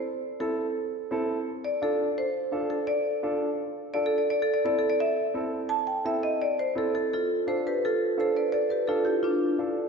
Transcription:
<<
  \new Staff \with { instrumentName = "Marimba" } { \time 4/4 \key d \dorian \tempo 4 = 170 c''4 a'2. | r8 d''8 a'4 c''4. a'8 | d''2 r4 \tuplet 3/2 { d''8 a'8 d''8 } | \tuplet 3/2 { d''8 a'8 d''8 d''8 a'8 d''8 } e''4 r4 |
a''8 g''8 e''8 dis''8 d''8 c''8 a'8 a'8 | <f' a'>4 <a' c''>8 <g' b'>8 <f' a'>4 <a' c''>8 <b' d''>8 | <a' d''>8 <g' b'>8 <f' a'>8 <e' g'>8 <d' f'>4. r8 | }
  \new Staff \with { instrumentName = "Upright piano" } { \time 4/4 \key d \dorian r4 <c' e' a'>8 r4. <c' e' a'>8 r8 | r4 <d' f' a'>8 r4. <d' f' a'>8 r8 | r4 <d' f' a'>8 r4. <d' f' a'>8 r8 | r4 <c' e' a'>8 r4. <c' e' a'>8 r8 |
r4 <c' e' a'>8 r4. <c' e' a'>8 r8 | r4 <d' f' a'>8 r4. <d' f' a'>8 r8 | r4 <d' f' a'>8 r4. <d' f' a'>8 r8 | }
>>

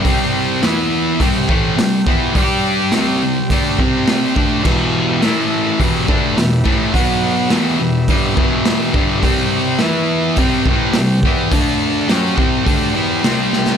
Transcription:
<<
  \new Staff \with { instrumentName = "Transistor combo organ" } { \time 4/4 \key c \lydian \tempo 4 = 105 <g' c'' g''>4 <e' b' e''>4 <g' c'' g''>2 | <g' d'' g''>4 <g' c'' g''>2. | <g' b' e''>4 <e' a' e''>4 <g' b' e''>2 | <fis' b' fis''>4 <g' b' e''>2. |
<g' c'' g''>4 <e' b' e''>4 <g' c'' g''>2 | <a' d'' a''>4 <g' c'' g''>2. | }
  \new Staff \with { instrumentName = "Distorted electric guitar" } { \clef bass \time 4/4 \key c \lydian <c g c'>4 <e b e'>4 <c g c'>8 <a, e a>8 <c g>8 <e b e'>8 | <g d' g'>4 <c g c'>8 <c g>8 <d a d'>8 <c g c'>4 <d a d'>8 | <e, b, e>4 <a, e a>4 <e, b, e>8 <d a d'>8 <e, b,>8 <a, e a>8 | <b, fis b>4 <e, b, e>8 <e, b,>8 <g, d g>8 <e, b, e>4 <g, d g>8 |
<c g c'>4 <e b e'>4 <c g c'>8 <a, e a>8 <c g>8 <e b e'>8 | <d a d'>4 <fis cis' fis'>8 <c g c'>8 <d a d'>8 <e b e'>8 <c g c'>4 | }
  \new DrumStaff \with { instrumentName = "Drums" } \drummode { \time 4/4 <hho bd>4 <hho sn>4 <hho bd>8 bd8 <hho sn>8 bd8 | <hho bd>4 <hho sn>4 <hho bd>8 bd8 <hho sn>8 bd8 | <cymc bd>4 <hho sn>4 <hho bd>8 bd8 <hho sn>8 bd8 | <hho bd>4 <hho sn>4 <hho bd>8 bd8 <hho sn>8 bd8 |
<hho bd>4 <hho sn>4 <hho bd>8 bd8 <hho sn>8 bd8 | <hho bd>4 <hho sn>8 bd8 <hho bd>4 <hho sn>8 sn16 sn16 | }
>>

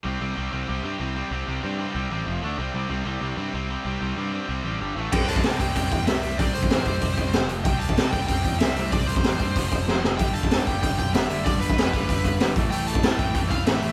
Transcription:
<<
  \new Staff \with { instrumentName = "Lead electric guitar" } { \time 4/4 \key c \major \tempo 4 = 190 r1 | r1 | r1 | r1 |
g''8 a''4 g''8 g''8 g''8 e''4 | d''8 c''2. r8 | g''8 a''4 g''8 g''8 g''8 e''4 | d''8 c''2. r8 |
g''8 a''4 g''8 g''8 g''8 e''4 | d''8 b'2. r8 | g''8 a''4 g''8 g''8 f''8 e''4 | }
  \new Staff \with { instrumentName = "Overdriven electric guitar" } { \clef bass \time 4/4 \key c \major <c g c'>8 <c g c'>8 <c g c'>8 <c g c'>8 <c g c'>8 <c g c'>8 <c g c'>8 <c g c'>8 | <c g c'>8 <c g c'>8 <c g c'>8 <c g c'>8 <c g c'>8 <c g c'>8 <f, c f>8 <d a d'>8 | <c g c'>8 <c g c'>8 <c g c'>8 <c g c'>8 <c g c'>8 <c g c'>8 <c g c'>8 <c g c'>8 | <c g c'>8 <c g c'>8 <c g c'>8 <c g c'>8 <c g c'>8 <c g c'>8 <g, d g>8 <a, e a>8 |
<c g c'>4 <c g c'>8 <c g c'>8 <c g c'>4 <c g c'>8 <c g c'>8 | <c g c'>4 <c g c'>8 <c g c'>8 <c g c'>4 <f, c f>8 <f, c f>8 | <c g c'>4 <c g c'>8 <c g c'>8 <c g c'>4 <c g c'>8 <c g c'>8 | <c g c'>4 <c g c'>8 <c g c'>8 <f, c f>4 <f, c f>8 <f, c f>8 |
<g, d g>4 <g, d g>8 <g, d g>8 <g, d g>4 <g, d g>8 <g, d g>8 | <g, d g>4 <g, d g>8 <g, d g>8 <g, d g>4 <g, d g>8 <a, e a>8 | <a, e a>4 <a, e a>8 <a, e a>8 <a, e a>4 <a, e a>8 <a, e a>8 | }
  \new Staff \with { instrumentName = "Overdriven electric guitar" } { \clef bass \time 4/4 \key c \major <c g c'>8 <c g c'>8 <c g c'>8 <c g c'>8 <c g c'>8 <c g c'>8 <c g c'>8 <c g c'>8 | <c g c'>8 <c g c'>8 <c g c'>8 <c g c'>8 <c g c'>8 <c g c'>8 <f, c f>8 <d a d'>8 | <c g c'>8 <c g c'>8 <c g c'>8 <c g c'>8 <c g c'>8 <c g c'>8 <c g c'>8 <c g c'>8 | <c g c'>8 <c g c'>8 <c g c'>8 <c g c'>8 <c g c'>8 <c g c'>8 <g, d g>8 <a, e a>8 |
<c g c'>4 <c g c'>8 <c g c'>8 <c g c'>4 <c g c'>8 <c g c'>8 | <c g c'>4 <c g c'>8 <c g c'>8 <c g c'>4 <f, c f>8 <f, c f>8 | <c g c'>4 <c g c'>8 <c g c'>8 <c g c'>4 <c g c'>8 <c g c'>8 | <c g c'>4 <c g c'>8 <c g c'>8 <f, c f>4 <f, c f>8 <f, c f>8 |
<g, d g>4 <g, d g>8 <g, d g>8 <g, d g>4 <g, d g>8 <g, d g>8 | <g, d g>4 <g, d g>8 <g, d g>8 <g, d g>4 <g, d g>8 <a, e a>8 | <a, e a>4 <a, e a>8 <a, e a>8 <a, e a>4 <a, e a>8 <a, e a>8 | }
  \new Staff \with { instrumentName = "Picked electric bass" } { \clef bass \time 4/4 \key c \major c,8 c,8 c,8 c,8 c,8 g,8 c,4 | c,8 c,8 g,4 c,8 a,,8 f,,8 d,8 | c,8 c,8 c,8 c,8 c,8 g,8 c,4 | c,8 c,8 g,4 c,8 a,,8 g,,8 a,,8 |
c,4 c8 c,8 c,8 e,8 c,8 c,8 | c,8 c,8 a,,8 c,8 c,8 c,8 f,,8 f,,8 | c,4 c8 c,8 c,8 e,8 c,8 c,8 | c,8 c,8 a,,8 g,8 f,,8 f,,8 f,,8 f,,8 |
g,,4 g,8 g,,8 g,,8 b,,8 g,,8 g,,8 | g,,8 g,,8 f,,8 g,,8 g,,8 g,,8 g,,8 a,,8 | a,,4 a,8 a,,8 a,,8 c,8 a,,8 a,,8 | }
  \new DrumStaff \with { instrumentName = "Drums" } \drummode { \time 4/4 r4 r4 r4 r4 | r4 r4 r4 r4 | r4 r4 r4 r4 | r4 r4 r4 r4 |
<cymc bd>8 hho16 bd16 <hho sn>8 <hho bd>8 <hho bd>8 <hho bd>8 <hho sn>8 hho8 | <hho bd>8 hho16 bd16 <hho sn>8 <hho bd>8 <hho bd>8 <hho bd>8 <hho sn>8 hho8 | <hho bd>8 hho16 bd16 <hho sn>8 <hho bd>8 <hho bd>8 <hho bd>8 <hho sn>8 hho8 | <hho bd>8 hho16 bd16 <hho sn>8 <hho bd>8 <hho bd>8 <hho bd>8 sn8 sn8 |
<hho bd>8 hho16 bd16 <hho sn>8 <hho bd>8 <hho bd>8 <hho bd>8 <hho sn>8 hho8 | <hho bd>8 hho16 bd16 <hho sn>8 <hho bd>8 <hho bd>8 <hho bd>8 <hho sn>8 <hho bd>8 | hho8 hho16 bd16 <hho sn>8 <hho bd>8 <hho bd>8 <hho bd>8 <hho sn>8 hho8 | }
>>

